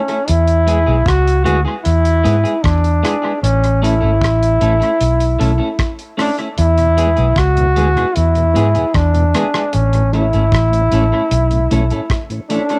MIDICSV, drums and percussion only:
0, 0, Header, 1, 2, 480
1, 0, Start_track
1, 0, Key_signature, 3, "major"
1, 0, Tempo, 788436
1, 167, Time_signature, 4, 2, 24, 8
1, 7788, End_track
2, 0, Start_track
2, 0, Title_t, "Drums"
2, 50, Note_on_c, 9, 42, 38
2, 111, Note_off_c, 9, 42, 0
2, 169, Note_on_c, 9, 42, 102
2, 230, Note_off_c, 9, 42, 0
2, 289, Note_on_c, 9, 42, 51
2, 350, Note_off_c, 9, 42, 0
2, 412, Note_on_c, 9, 42, 77
2, 473, Note_off_c, 9, 42, 0
2, 645, Note_on_c, 9, 36, 113
2, 656, Note_on_c, 9, 42, 85
2, 661, Note_on_c, 9, 37, 113
2, 706, Note_off_c, 9, 36, 0
2, 717, Note_off_c, 9, 42, 0
2, 722, Note_off_c, 9, 37, 0
2, 776, Note_on_c, 9, 42, 59
2, 837, Note_off_c, 9, 42, 0
2, 889, Note_on_c, 9, 42, 66
2, 950, Note_off_c, 9, 42, 0
2, 1127, Note_on_c, 9, 42, 84
2, 1188, Note_off_c, 9, 42, 0
2, 1249, Note_on_c, 9, 42, 56
2, 1310, Note_off_c, 9, 42, 0
2, 1372, Note_on_c, 9, 42, 74
2, 1433, Note_off_c, 9, 42, 0
2, 1492, Note_on_c, 9, 42, 38
2, 1553, Note_off_c, 9, 42, 0
2, 1607, Note_on_c, 9, 36, 112
2, 1611, Note_on_c, 9, 42, 77
2, 1615, Note_on_c, 9, 37, 104
2, 1668, Note_off_c, 9, 36, 0
2, 1672, Note_off_c, 9, 42, 0
2, 1676, Note_off_c, 9, 37, 0
2, 1730, Note_on_c, 9, 42, 45
2, 1791, Note_off_c, 9, 42, 0
2, 1854, Note_on_c, 9, 42, 86
2, 1857, Note_on_c, 9, 37, 71
2, 1915, Note_off_c, 9, 42, 0
2, 1918, Note_off_c, 9, 37, 0
2, 2093, Note_on_c, 9, 42, 97
2, 2154, Note_off_c, 9, 42, 0
2, 2213, Note_on_c, 9, 42, 49
2, 2274, Note_off_c, 9, 42, 0
2, 2339, Note_on_c, 9, 42, 80
2, 2399, Note_off_c, 9, 42, 0
2, 2565, Note_on_c, 9, 36, 106
2, 2577, Note_on_c, 9, 42, 92
2, 2582, Note_on_c, 9, 37, 120
2, 2626, Note_off_c, 9, 36, 0
2, 2638, Note_off_c, 9, 42, 0
2, 2643, Note_off_c, 9, 37, 0
2, 2694, Note_on_c, 9, 42, 59
2, 2755, Note_off_c, 9, 42, 0
2, 2807, Note_on_c, 9, 42, 74
2, 2868, Note_off_c, 9, 42, 0
2, 2933, Note_on_c, 9, 42, 39
2, 2994, Note_off_c, 9, 42, 0
2, 3047, Note_on_c, 9, 42, 87
2, 3108, Note_off_c, 9, 42, 0
2, 3168, Note_on_c, 9, 42, 56
2, 3228, Note_off_c, 9, 42, 0
2, 3292, Note_on_c, 9, 42, 71
2, 3353, Note_off_c, 9, 42, 0
2, 3525, Note_on_c, 9, 36, 104
2, 3525, Note_on_c, 9, 42, 78
2, 3529, Note_on_c, 9, 37, 99
2, 3585, Note_off_c, 9, 36, 0
2, 3586, Note_off_c, 9, 42, 0
2, 3590, Note_off_c, 9, 37, 0
2, 3646, Note_on_c, 9, 42, 46
2, 3707, Note_off_c, 9, 42, 0
2, 3768, Note_on_c, 9, 46, 60
2, 3770, Note_on_c, 9, 37, 69
2, 3828, Note_off_c, 9, 46, 0
2, 3831, Note_off_c, 9, 37, 0
2, 3886, Note_on_c, 9, 42, 38
2, 3947, Note_off_c, 9, 42, 0
2, 4004, Note_on_c, 9, 42, 93
2, 4065, Note_off_c, 9, 42, 0
2, 4126, Note_on_c, 9, 42, 51
2, 4187, Note_off_c, 9, 42, 0
2, 4249, Note_on_c, 9, 42, 69
2, 4310, Note_off_c, 9, 42, 0
2, 4364, Note_on_c, 9, 42, 35
2, 4425, Note_off_c, 9, 42, 0
2, 4482, Note_on_c, 9, 36, 107
2, 4489, Note_on_c, 9, 42, 89
2, 4494, Note_on_c, 9, 37, 118
2, 4543, Note_off_c, 9, 36, 0
2, 4550, Note_off_c, 9, 42, 0
2, 4555, Note_off_c, 9, 37, 0
2, 4608, Note_on_c, 9, 42, 60
2, 4669, Note_off_c, 9, 42, 0
2, 4726, Note_on_c, 9, 42, 71
2, 4787, Note_off_c, 9, 42, 0
2, 4851, Note_on_c, 9, 42, 36
2, 4912, Note_off_c, 9, 42, 0
2, 4966, Note_on_c, 9, 42, 84
2, 5027, Note_off_c, 9, 42, 0
2, 5085, Note_on_c, 9, 42, 56
2, 5146, Note_off_c, 9, 42, 0
2, 5210, Note_on_c, 9, 42, 67
2, 5271, Note_off_c, 9, 42, 0
2, 5326, Note_on_c, 9, 42, 40
2, 5387, Note_off_c, 9, 42, 0
2, 5445, Note_on_c, 9, 36, 122
2, 5445, Note_on_c, 9, 42, 83
2, 5449, Note_on_c, 9, 37, 97
2, 5506, Note_off_c, 9, 36, 0
2, 5506, Note_off_c, 9, 42, 0
2, 5510, Note_off_c, 9, 37, 0
2, 5567, Note_on_c, 9, 42, 48
2, 5628, Note_off_c, 9, 42, 0
2, 5688, Note_on_c, 9, 42, 89
2, 5691, Note_on_c, 9, 37, 68
2, 5749, Note_off_c, 9, 42, 0
2, 5752, Note_off_c, 9, 37, 0
2, 5809, Note_on_c, 9, 37, 86
2, 5870, Note_off_c, 9, 37, 0
2, 5923, Note_on_c, 9, 42, 95
2, 5984, Note_off_c, 9, 42, 0
2, 6045, Note_on_c, 9, 42, 53
2, 6106, Note_off_c, 9, 42, 0
2, 6169, Note_on_c, 9, 42, 80
2, 6230, Note_off_c, 9, 42, 0
2, 6289, Note_on_c, 9, 42, 37
2, 6350, Note_off_c, 9, 42, 0
2, 6404, Note_on_c, 9, 36, 97
2, 6415, Note_on_c, 9, 42, 89
2, 6419, Note_on_c, 9, 37, 117
2, 6465, Note_off_c, 9, 36, 0
2, 6475, Note_off_c, 9, 42, 0
2, 6480, Note_off_c, 9, 37, 0
2, 6532, Note_on_c, 9, 42, 58
2, 6593, Note_off_c, 9, 42, 0
2, 6645, Note_on_c, 9, 42, 70
2, 6706, Note_off_c, 9, 42, 0
2, 6886, Note_on_c, 9, 42, 94
2, 6947, Note_off_c, 9, 42, 0
2, 7005, Note_on_c, 9, 42, 53
2, 7066, Note_off_c, 9, 42, 0
2, 7129, Note_on_c, 9, 42, 69
2, 7190, Note_off_c, 9, 42, 0
2, 7246, Note_on_c, 9, 42, 36
2, 7307, Note_off_c, 9, 42, 0
2, 7365, Note_on_c, 9, 36, 108
2, 7367, Note_on_c, 9, 42, 85
2, 7371, Note_on_c, 9, 37, 93
2, 7426, Note_off_c, 9, 36, 0
2, 7428, Note_off_c, 9, 42, 0
2, 7432, Note_off_c, 9, 37, 0
2, 7488, Note_on_c, 9, 42, 45
2, 7549, Note_off_c, 9, 42, 0
2, 7610, Note_on_c, 9, 42, 79
2, 7671, Note_off_c, 9, 42, 0
2, 7726, Note_on_c, 9, 42, 41
2, 7787, Note_off_c, 9, 42, 0
2, 7788, End_track
0, 0, End_of_file